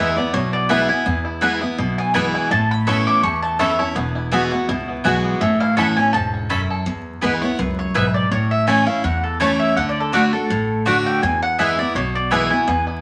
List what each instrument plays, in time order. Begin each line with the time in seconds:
Already playing: upright bass E2, steel-string acoustic guitar E2 E3 G#3, five-string banjo B3 E4, mandolin E5
0.00 steel-string acoustic guitar B3 E4
0.16 five-string banjo B3, steel-string acoustic guitar B3 E4, mandolin D5
0.33 upright bass B1, steel-string acoustic guitar B2, five-string banjo E4, mandolin C#5
0.53 five-string banjo B3, mandolin D5
0.69 steel-string acoustic guitar E3 G#3 B3 E4, mandolin B3 E4 B4 E5 G#5, five-string banjo E4
0.89 steel-string acoustic guitar B3 E4, five-string banjo E4, mandolin G#5
1.06 steel-string acoustic guitar E2, upright bass E2, five-string banjo B3
1.25 five-string banjo E4
1.41 steel-string acoustic guitar E3 G#3 B3 E4, mandolin B3 E4 B4 G#5, five-string banjo E4
1.61 five-string banjo B3, steel-string acoustic guitar B3 E4
1.78 upright bass B1, steel-string acoustic guitar B2, five-string banjo E4
1.98 five-string banjo B3, mandolin G#5
2.14 steel-string acoustic guitar E3 G#3 B3 E4, mandolin B3 E4 B4 G#5 B5, five-string banjo E4
2.34 five-string banjo E4, mandolin G#5
2.51 upright bass A1, steel-string acoustic guitar A2, five-string banjo A3, mandolin A5
2.71 mandolin B5
2.87 steel-string acoustic guitar E3 B3 C#4 E4, five-string banjo A3, mandolin C#4 A4 E5 B5 C#6
3.07 five-string banjo E4, mandolin D6
3.23 steel-string acoustic guitar E2, upright bass E2, five-string banjo A4, mandolin C#6
3.42 five-string banjo A3, mandolin A5
3.59 steel-string acoustic guitar E3 B3 C#4 E4, mandolin C#4 A4 E5 B5, five-string banjo E4
3.79 steel-string acoustic guitar C#4 E4, five-string banjo A4, mandolin C#5
3.95 upright bass E1, steel-string acoustic guitar E2, five-string banjo B3, mandolin B4
4.15 five-string banjo E4
4.31 steel-string acoustic guitar E3 G#3 B3 F#4, mandolin B3 F#4 E5 G#5, five-string banjo B3
4.51 steel-string acoustic guitar B3 F#4, five-string banjo E4
4.69 upright bass C#2, steel-string acoustic guitar B2, five-string banjo E4
4.88 five-string banjo B3
5.04 upright bass B1, steel-string acoustic guitar E3 G#3 B3 F#4, mandolin B3 F#4 E5 G#5, five-string banjo E4
5.24 five-string banjo B3
5.41 upright bass A1, steel-string acoustic guitar A2, five-string banjo C#4, mandolin E5
5.60 five-string banjo E4, mandolin F5
5.76 steel-string acoustic guitar E3 B3 C#4 E4, mandolin C#4 A4 E5 F#5 B5, five-string banjo A4
5.96 five-string banjo C#4, steel-string acoustic guitar C#4 E4, mandolin G#5
6.13 upright bass E1, steel-string acoustic guitar G#2, five-string banjo A4, mandolin A5
6.34 five-string banjo C#4
6.49 steel-string acoustic guitar F#2, mandolin C#4 A4 E5 B5, five-string banjo E4
6.70 five-string banjo A4
6.86 steel-string acoustic guitar E2, upright bass E2
7.21 upright bass D2, steel-string acoustic guitar E3 G#3 B3 E4, mandolin B3 E4 B4 G#5
7.42 steel-string acoustic guitar B3 E4, mandolin C#5
7.59 upright bass C#2, steel-string acoustic guitar F#2, mandolin B4
7.79 mandolin C#5
7.94 upright bass B1, steel-string acoustic guitar G#2, mandolin B3 E4 B4 E5 G#5
8.14 mandolin D5
8.31 upright bass A1, steel-string acoustic guitar A2, mandolin C#5
8.51 mandolin E5
8.67 steel-string acoustic guitar E3 A3 C#4 E4, mandolin A3 E4 C#5 G#5 A5
8.87 steel-string acoustic guitar C#4 E4, mandolin F5
9.04 steel-string acoustic guitar E2, upright bass E2, mandolin F#5
9.23 mandolin A4
9.40 steel-string acoustic guitar E3 A3 C#4 E4, mandolin A3 E4 C#5 A5
9.59 mandolin E5
9.76 upright bass D2, steel-string acoustic guitar D3, mandolin F#5
9.89 mandolin D5
10.00 mandolin A4
10.12 steel-string acoustic guitar D3 A3 D4 F#4, mandolin A3 F#4 D5 F#5
10.33 steel-string acoustic guitar D4 F#4, mandolin A4
10.50 upright bass A1, steel-string acoustic guitar A2
10.85 steel-string acoustic guitar D3 A3 D4 F#4, mandolin A3 F#4 D5 F#5
11.06 mandolin G5
11.23 upright bass E2, steel-string acoustic guitar E2, mandolin G#5
11.42 mandolin F#5
11.58 steel-string acoustic guitar E3 G#3 B3 E4, mandolin B3 E4 B4 E5 G#5
11.78 steel-string acoustic guitar B3 E4, mandolin D5
11.95 upright bass B1, steel-string acoustic guitar B2, mandolin C#5
12.15 mandolin D5
12.31 steel-string acoustic guitar E3 G#3 B3 E4, mandolin B3 E4 B4 E5 G#5
12.50 steel-string acoustic guitar B3 E4, mandolin G#5
12.68 steel-string acoustic guitar E2, upright bass E2, five-string banjo B3
12.87 five-string banjo E4